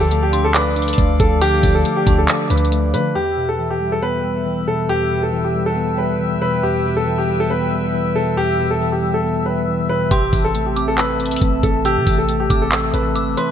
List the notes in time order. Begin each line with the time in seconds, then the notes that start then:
Already playing: D2 D3 F3 A4 D5 F5 A5 D6
0.01 A4
0.11 A3, closed hi-hat
0.23 G4
0.33 D4 C6, closed hi-hat
0.45 A4
0.55 B4 D5 D6, clap, closed hi-hat
0.76 D4, closed hi-hat
0.82 closed hi-hat
0.88 closed hi-hat
0.93 closed hi-hat
0.98 D2 A3, kick, closed hi-hat
1.20 D2 F3 A4, kick, closed hi-hat
1.42 D3 G4 D6, closed hi-hat
1.63 D2 F3, kick, open hi-hat
1.75 A4
1.85 A3, closed hi-hat
1.97 G4
2.07 D2 D4 A5, kick, closed hi-hat
2.18 A4
2.28 D5, clap, closed hi-hat
2.50 D2 D4 B4, closed hi-hat
2.58 closed hi-hat
2.65 closed hi-hat
2.72 A3, closed hi-hat
2.94 D3 F3 B4, closed hi-hat
3.15 E2 G4 B4 E5 G5 E6
3.37 B2
3.49 A4
3.59 E3
3.71 G4
3.81 G3
3.92 A4
4.02 B3 B4
4.24 G3
4.46 E3
4.68 B2 A4
4.89 E2 G4
5.11 B2
5.23 A4
5.33 E3
5.45 G4
5.55 G3
5.66 A4
5.76 B3
5.98 G3 B4
6.20 E3
6.42 B2 B4
6.63 E2 G4
6.85 B2
6.97 A4
7.07 E3
7.18 G4
7.29 G3
7.40 A4
7.50 B3 B4
7.72 G3
7.94 E3
8.15 B2 A4
8.37 E2 G4
8.59 B2
8.71 A4
8.81 E3
8.92 G4
9.02 G3
9.14 A4
9.24 B3
9.46 G3 B4
9.68 E3
9.89 B2 B4
10.11 A1 C3 C4 G4 A5 C6, kick, closed hi-hat
10.33 A1 E3, kick, open hi-hat
10.45 A4
10.55 A3, closed hi-hat
10.66 G4
10.76 C4 D6, closed hi-hat
10.88 A4
10.98 A4 B4 E6, clap, closed hi-hat
11.20 C4, closed hi-hat
11.26 closed hi-hat
11.31 closed hi-hat
11.36 closed hi-hat
11.41 A1 A3, kick, closed hi-hat
11.63 A1 E3 A4, kick, closed hi-hat
11.85 C3 G4 E6, closed hi-hat
11.97 C3
12.07 A1 E3, kick, open hi-hat
12.18 A4
12.29 A3, closed hi-hat
12.40 G4
12.50 A1 C4 D6, kick, closed hi-hat
12.62 A4
12.72 A4 E6, clap, closed hi-hat
12.94 A1 C4 B4, closed hi-hat
13.15 G1 A3 D6, closed hi-hat
13.37 E3 B4 C6, closed hi-hat